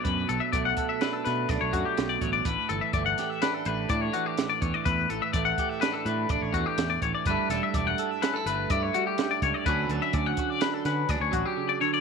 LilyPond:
<<
  \new Staff \with { instrumentName = "Clean electric guitar" } { \time 5/4 \key a \mixolydian \tempo 4 = 125 b'8 a'16 e''16 d''16 fis''8 e''16 b'16 a'16 b'8 d''16 cis''16 fis'16 g'8 d''16 cis''16 d''16 | b'8 a'16 e''16 d''16 fis''8 e''16 b'16 a'16 b'8 d''16 cis''16 fis'16 g'8 d''16 cis''16 d''16 | b'8 a'16 e''16 d''16 fis''8 e''16 b'16 a'16 b'8 d''16 cis''16 fis'16 g'8 d''16 cis''16 d''16 | b'8 a'16 e''16 d''16 fis''8 e''16 b'16 a'16 b'8 d''16 cis''16 fis'16 g'8 d''16 cis''16 d''16 |
b'8 a'16 e''16 d''16 fis''8 d''16 b'16 a'16 b'8 d''16 cis''16 fis'16 g'8 d''16 cis''16 d''16 | }
  \new Staff \with { instrumentName = "Clean electric guitar" } { \time 5/4 \key a \mixolydian << { a4 a8 a'8 d'8 a8 d'2 | r4 a8 g'8 d'8 a8 d'2 | r4 a8 g'8 d'8 a8 d'2 | <g a e' a'>4 a8 a'8 cis'16 e'16 a8 e'2 |
<fis cis' d' fis'>4 cis'8 fis'8 d'8 cis'8 d'2 | } \\ { b,8 fis2. fis8 b,8 fis8 | a,8 e2. e8 a,8 e8 | a,8 e2. e8 a,8 e8 | g,8 g2. g8 g,8 g8 |
d8 fis2. fis8 cis8 d8 | } >> }
  \new Staff \with { instrumentName = "Fingered electric bass" } { \clef bass \time 5/4 \key a \mixolydian fis,8 b,,16 r16 b,,8 r4 b,8 b,,16 b,,16 fis,16 r16 b,,8 a,,8 | a,,16 r16 g,,16 r16 g,,8 r4 a,,8 a,8 r4 e,16 r16 | e,8 a,,16 r16 a,,8 r4 a,8 a,,16 a,,16 e,16 r16 e,8 a,,16 r16 | g,,16 r16 e,,16 r16 e,,8 r4 g,,8 g,8 r4 cis,16 r16 |
d,8 d,16 r16 d,8 r4 d8 d,16 d,16 a,,16 r4 r16 | }
  \new DrumStaff \with { instrumentName = "Drums" } \drummode { \time 5/4 <hh bd>8 hh8 <hh bd>8 <hh bd>8 <hh sn>8 <hh sn>8 <hh bd sn>8 <hh bd>8 <hh sn>8 <hh bd>8 | <hh bd>8 hh8 <hh bd>8 <hh sn>8 <hh sn>8 hh8 <hh bd>8 hh8 <hh sn>8 <hh bd>8 | <hh bd>8 hh8 <hh bd>8 <hh bd>8 <hh sn>8 hh8 <hh bd>8 <hh bd>8 <hh sn>8 <hh bd>8 | <hh bd>8 <hh sn>8 <hh bd>8 hh8 <hh sn>8 hh8 <hh bd>8 hh8 <hh sn>8 <hh bd>8 |
<hh bd>8 hh8 <hh bd>8 <hh bd>8 <hh sn>8 <hh sn>8 <hh bd sn>8 <hh bd>8 r4 | }
>>